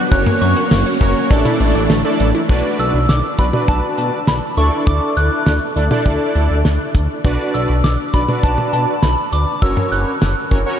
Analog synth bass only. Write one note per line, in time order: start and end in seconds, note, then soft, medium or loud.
0.12 0.25 F#1 loud
0.41 0.54 F#2 loud
0.71 0.84 F#1 loud
1.01 1.14 F#1 loud
1.31 1.44 A1 loud
1.60 1.73 A1 loud
1.75 1.88 A1 loud
1.90 2.03 A1 loud
2.20 2.33 A1 medium
2.49 2.62 B1 loud
2.79 2.92 B1 loud
2.94 3.07 B1 loud
3.09 3.22 B1 loud
3.39 3.52 B1 loud
3.68 3.81 B1 loud
3.98 4.11 B2 loud
4.28 4.41 B1 loud
4.57 4.70 D2 loud
4.87 5.00 D2 loud
5.17 5.30 D2 loud
5.46 5.59 D2 loud
5.76 5.89 D2 loud
6.06 6.19 D2 loud
6.35 6.48 D2 loud
6.50 6.63 D2 loud
6.65 6.78 D2 loud
6.95 7.08 D2 loud
7.25 7.38 B1 loud
7.54 7.67 B1 medium
7.69 7.82 B1 loud
7.84 7.97 B1 loud
8.14 8.27 B1 loud
8.43 8.56 B1 loud
8.73 8.86 B2 loud
9.03 9.16 B1 loud
9.32 9.45 D2 medium
9.62 9.75 F#1 loud
9.92 10.05 F#1 loud
10.21 10.35 F#1 loud
10.51 10.64 F#1 loud